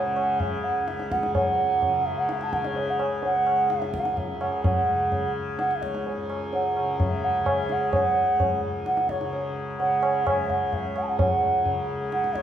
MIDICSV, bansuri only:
0, 0, Header, 1, 2, 480
1, 0, Start_track
1, 0, Tempo, 471328
1, 1370, Time_signature, 7, 2, 24, 8
1, 5686, Tempo, 467290
1, 12711, End_track
2, 0, Start_track
2, 0, Title_t, "Bansuri"
2, 0, Program_c, 0, 73
2, 0, Note_on_c, 0, 78, 79
2, 406, Note_on_c, 0, 76, 78
2, 421, Note_off_c, 0, 78, 0
2, 644, Note_on_c, 0, 78, 86
2, 659, Note_off_c, 0, 76, 0
2, 886, Note_on_c, 0, 76, 91
2, 902, Note_off_c, 0, 78, 0
2, 1132, Note_on_c, 0, 78, 72
2, 1147, Note_off_c, 0, 76, 0
2, 1367, Note_off_c, 0, 78, 0
2, 1373, Note_on_c, 0, 78, 88
2, 2091, Note_on_c, 0, 76, 84
2, 2107, Note_off_c, 0, 78, 0
2, 2217, Note_on_c, 0, 78, 85
2, 2232, Note_off_c, 0, 76, 0
2, 2335, Note_on_c, 0, 76, 75
2, 2351, Note_off_c, 0, 78, 0
2, 2464, Note_on_c, 0, 81, 93
2, 2479, Note_off_c, 0, 76, 0
2, 2569, Note_on_c, 0, 78, 77
2, 2585, Note_off_c, 0, 81, 0
2, 2695, Note_on_c, 0, 73, 74
2, 2710, Note_off_c, 0, 78, 0
2, 2824, Note_on_c, 0, 76, 83
2, 2839, Note_off_c, 0, 73, 0
2, 2946, Note_on_c, 0, 78, 67
2, 2962, Note_off_c, 0, 76, 0
2, 3059, Note_off_c, 0, 78, 0
2, 3307, Note_on_c, 0, 78, 91
2, 3781, Note_on_c, 0, 76, 86
2, 3796, Note_off_c, 0, 78, 0
2, 4006, Note_off_c, 0, 76, 0
2, 4012, Note_on_c, 0, 78, 81
2, 4250, Note_on_c, 0, 76, 93
2, 4265, Note_off_c, 0, 78, 0
2, 4491, Note_on_c, 0, 78, 73
2, 4506, Note_off_c, 0, 76, 0
2, 4721, Note_off_c, 0, 78, 0
2, 4727, Note_on_c, 0, 78, 89
2, 5406, Note_off_c, 0, 78, 0
2, 5690, Note_on_c, 0, 78, 78
2, 5858, Note_on_c, 0, 76, 66
2, 5874, Note_off_c, 0, 78, 0
2, 5934, Note_on_c, 0, 73, 76
2, 5949, Note_off_c, 0, 76, 0
2, 6413, Note_off_c, 0, 73, 0
2, 6665, Note_on_c, 0, 78, 83
2, 7107, Note_off_c, 0, 78, 0
2, 7151, Note_on_c, 0, 76, 86
2, 7384, Note_on_c, 0, 78, 91
2, 7399, Note_off_c, 0, 76, 0
2, 7631, Note_on_c, 0, 76, 100
2, 7647, Note_off_c, 0, 78, 0
2, 7877, Note_on_c, 0, 78, 80
2, 7893, Note_off_c, 0, 76, 0
2, 8094, Note_off_c, 0, 78, 0
2, 8100, Note_on_c, 0, 78, 90
2, 8778, Note_off_c, 0, 78, 0
2, 9054, Note_on_c, 0, 78, 83
2, 9291, Note_on_c, 0, 73, 76
2, 9306, Note_off_c, 0, 78, 0
2, 9773, Note_off_c, 0, 73, 0
2, 10008, Note_on_c, 0, 78, 96
2, 10486, Note_on_c, 0, 76, 97
2, 10501, Note_off_c, 0, 78, 0
2, 10728, Note_on_c, 0, 78, 88
2, 10743, Note_off_c, 0, 76, 0
2, 10972, Note_on_c, 0, 76, 98
2, 10987, Note_off_c, 0, 78, 0
2, 11219, Note_on_c, 0, 78, 74
2, 11235, Note_off_c, 0, 76, 0
2, 11272, Note_on_c, 0, 81, 59
2, 11287, Note_off_c, 0, 78, 0
2, 11330, Note_on_c, 0, 78, 81
2, 11345, Note_off_c, 0, 81, 0
2, 11447, Note_off_c, 0, 78, 0
2, 11453, Note_on_c, 0, 78, 86
2, 12128, Note_off_c, 0, 78, 0
2, 12403, Note_on_c, 0, 78, 91
2, 12645, Note_on_c, 0, 73, 86
2, 12660, Note_off_c, 0, 78, 0
2, 12711, Note_off_c, 0, 73, 0
2, 12711, End_track
0, 0, End_of_file